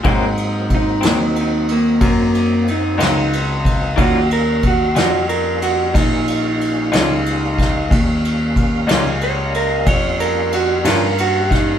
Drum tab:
RD |xxxxxxxxxxxx|xxxxxxxxxxxx|xxxxxxxxxxxx|
SD |---o-----o--|---o-----o-o|---o-----o-o|
BD |o-o---o----o|o-o---o----o|o-o---o----o|